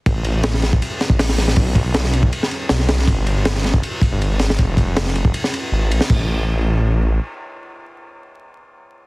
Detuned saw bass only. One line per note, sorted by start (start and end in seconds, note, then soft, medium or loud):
0.06 0.80 A1 loud
1.10 1.55 A1 loud
1.57 2.31 B1 loud
2.70 3.06 B1 medium
3.08 3.82 G1 loud
4.12 4.57 G1 loud
4.59 5.33 F1 loud
5.72 5.92 G#1 loud
5.91 6.00 A#1 medium
6.10 7.19 A1 loud